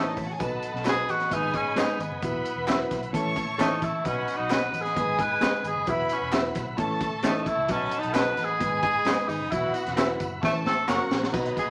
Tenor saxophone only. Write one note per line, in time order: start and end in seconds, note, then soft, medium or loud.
0.00 0.17 D#4 medium
0.89 1.12 G#4 loud
1.10 1.36 F#4 loud
1.34 1.57 D#4 loud
1.55 1.79 C#4 medium
1.78 2.03 D#4 medium
2.01 3.15 B3 medium
3.61 3.85 D#4 medium
3.84 4.08 E4 medium
4.07 4.38 C#4 medium
4.37 4.53 D#4 medium
4.51 4.83 B4 loud
4.81 5.22 G#4 loud
5.20 5.65 B4 loud
5.67 5.91 G#4 medium
5.90 6.15 E4 medium
6.13 6.35 C#4 medium
7.26 7.49 D#4 medium
7.48 7.72 E4 loud
7.71 8.00 C#4 medium
7.99 8.15 D#4 loud
8.14 8.46 B4 loud
8.44 8.82 G#4 loud
8.83 9.30 G#4 loud
9.29 9.53 D#4 loud
9.51 9.76 E4 medium
9.74 9.97 B3 medium
10.45 10.54 A3 medium
10.67 10.90 A4 loud
10.89 11.11 F#4 medium
11.59 11.70 G#4 medium